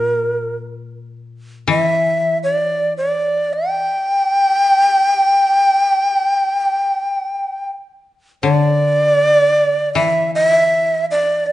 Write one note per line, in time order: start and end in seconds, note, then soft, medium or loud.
0.00 1.67 A#2 medium
0.00 0.56 A#4 medium
1.68 3.87 E3 medium
1.68 2.38 E5 medium
2.43 2.93 D5 medium
2.97 3.55 D5 medium
3.53 7.68 G5 medium
8.43 10.72 D3 medium
8.43 9.93 D5 medium
9.94 11.52 E3 medium
9.94 10.31 E5 medium
10.35 10.46 D#5 medium
10.46 11.06 E5 medium
11.11 11.48 D5 medium
11.46 11.52 E5 medium